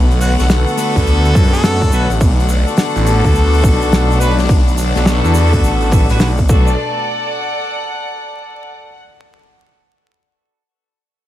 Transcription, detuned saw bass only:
0.00 0.36 B1 loud
0.39 0.65 B1 loud
0.96 1.33 D2 loud
1.35 1.91 F#2 loud
1.92 2.07 B1 loud
2.10 2.19 A1 loud
2.21 2.64 B1 loud
2.96 3.22 A1 loud
3.24 3.62 D2 loud
3.64 4.48 B1 loud
4.49 4.93 B1 loud
4.96 5.21 B1 loud
5.24 5.62 E2 loud
5.63 6.07 A1 loud
6.10 6.19 A1 loud
6.21 6.49 B1 medium
6.49 6.76 B1 loud

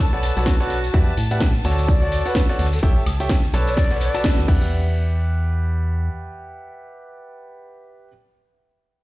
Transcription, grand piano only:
0.13 0.33 A4 medium
0.13 0.33 B4 medium
0.13 0.33 C#5 medium
0.13 0.33 D5 medium
0.13 0.33 F#5 medium
0.37 0.56 A4 medium
0.37 0.56 B4 medium
0.37 0.56 C#5 medium
0.37 0.56 D5 medium
0.37 0.56 F#5 medium
0.60 0.75 A4 medium
0.60 0.75 B4 medium
0.60 0.75 C#5 medium
0.60 0.75 D5 medium
0.60 0.75 F#5 loud
0.94 1.11 G4 loud
0.94 1.11 B4 medium
0.94 1.11 D5 medium
0.94 1.11 E5 medium
0.94 1.11 F#5 loud
1.31 1.46 G4 medium
1.31 1.46 B4 medium
1.31 1.46 D5 medium
1.31 1.46 E5 medium
1.31 1.46 F#5 medium
1.65 1.99 F#4 medium
1.65 1.99 A4 medium
1.65 1.99 C#5 medium
1.65 1.99 D5 medium
1.65 1.99 A5 loud
2.02 2.22 F#4 medium
2.02 2.22 A4 medium
2.02 2.22 C#5 medium
2.02 2.22 D5 medium
2.02 2.22 F#5 medium
2.26 2.45 F#4 medium
2.26 2.45 A4 medium
2.26 2.45 C#5 medium
2.26 2.45 D5 medium
2.26 2.45 F#5 medium
2.49 2.64 F#4 medium
2.49 2.64 A4 medium
2.49 2.64 C#5 medium
2.49 2.64 D5 medium
2.49 2.64 F#5 loud
2.83 3.00 G4 loud
2.83 3.00 A4 medium
2.83 3.00 C#5 medium
2.83 3.00 E5 medium
2.83 3.00 G5 loud
3.20 3.35 G4 medium
3.20 3.35 A4 medium
3.20 3.35 C#5 medium
3.20 3.35 E5 medium
3.20 3.35 G5 medium
3.54 3.88 A4 medium
3.54 3.88 B4 medium
3.54 3.88 C#5 medium
3.54 3.88 D5 medium
3.54 3.88 A5 loud
3.91 4.11 A4 medium
3.91 4.11 B4 medium
3.91 4.11 C#5 medium
3.91 4.11 D5 medium
3.91 4.11 F#5 medium
4.15 4.46 F#4 loud
4.15 4.46 A4 medium
4.15 4.46 B4 medium
4.15 4.46 D5 medium
4.15 4.46 A5 loud
4.48 8.08 G4 medium
4.48 8.08 B4 medium
4.48 8.08 D5 medium
4.48 8.08 E5 medium
4.48 8.08 F#5 loud

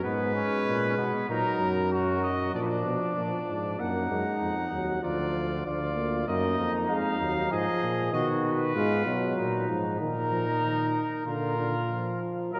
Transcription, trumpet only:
0.03 1.26 B4 medium
1.29 1.90 A#4 medium
1.92 2.22 A#4 medium
2.23 2.53 D#5 medium
2.55 2.63 D5 medium
2.62 2.69 B4 medium
2.67 3.81 D5 medium
3.80 5.03 F#5 medium
5.03 5.64 D5 medium
5.66 6.27 D5 medium
6.28 6.72 D#5 medium
6.89 7.50 F5 medium
7.51 8.12 D#5 medium
8.13 8.27 D#5 medium
8.44 9.70 B4 medium
10.01 11.23 A#4 medium
11.27 12.20 A#4 medium
12.54 12.60 D#5 loud

